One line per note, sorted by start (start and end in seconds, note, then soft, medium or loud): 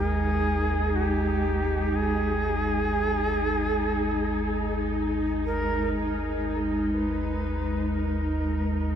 0.00 5.95 G#1 medium
0.00 5.96 D#2 medium
0.00 8.96 G#3 medium
0.00 8.96 D#4 medium
0.00 0.97 G#4 loud
0.96 1.97 G4 medium
1.95 4.96 G#4 loud
5.46 5.93 A#4 medium
5.94 8.96 G#1 medium
5.94 8.96 D#2 medium
5.94 6.94 G#4 medium
6.92 7.96 B4 loud
7.95 8.96 A#4 medium